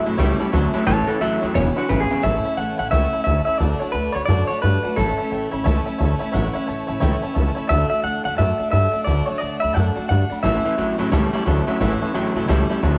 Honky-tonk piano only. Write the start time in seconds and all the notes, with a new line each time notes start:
0.05 C#5 E5 A5
0.17 C#5 E5 G5
0.39 C#5 E5 A5
0.52 C#5 E5 A5
0.74 C#5 E5 A5
0.87 C#5 E5 A5
1.07 C#5 E5 B5
1.20 C#5 E5 F#5
1.41 C#5 E5 G5
1.54 B4 E5 G#5
1.76 B4 E5 G#5
1.89 B4 E5 G#5
2.10 B4 E5 G#5
2.23 C#5 E5 A5
2.45 C#5 E5 A5
2.57 C#5 E5 A5
2.78 C#5 E5 A5
2.92 C#5 E5 G5
3.13 C#5 E5 A5
3.25 C#5 E5 A5
3.46 C#5 E5 A5
3.58 D5 F#5 A5
3.80 D5 F#5 A5
3.92 D5 F#5 A5
4.14 D5 F#5 B5
4.28 D5 F#5 A5
4.48 D5 F#5 A5
4.61 D5 F#5 A5
4.83 D5 F#5 A5
4.96 C#5 E5 A5
5.17 C#5 E5 A5
5.30 C#5 E5 G5
5.51 C#5 E5 B5
5.64 C#5 E5 A5
5.85 C#5 E5 A5
5.98 C#5 E5 A5
6.19 C#5 E5 A5
6.32 C#5 E5 F#5
6.53 C#5 E5 F#5
6.66 C#5 E5 A5
6.87 C#5 E5 A5
7.00 C#5 E5 G5
7.22 C#5 E5 A5
7.34 C#5 E5 A5
7.55 C#5 E5 A5
7.67 D5 F#5 A5
7.88 D5 F#5 A5
8.02 D5 F#5 A5
8.23 D5 F#5 A5
8.37 D5 F#5 A5
8.58 D5 F#5 A5
8.71 D5 F#5 A5
8.92 D5 F#5 A5
9.05 D5 F#5 A5
9.26 D5 F#5 A5
9.40 D5 F#5 A5
9.60 D5 F#5 B5
9.73 D5 F#5 A5
9.95 D5 F#5 A5
10.08 D5 F#5 A5
10.30 D5 F#5 B5
10.43 C#5 E5 A5
10.64 C#5 E5 A5
10.77 C#5 E5 F#5
10.98 C#5 E5 A5
11.12 C#5 E5 A5
11.34 C#5 E5 A5
11.46 C#5 E5 A5
11.68 C#5 E5 F#5
11.80 C#5 E5 F#5
12.01 C#5 E5 A5
12.14 C#5 E5 G5
12.35 C#5 E5 A5
12.48 C#5 E5 A5
12.70 C#5 E5 A5
12.82 C#5 E5 A5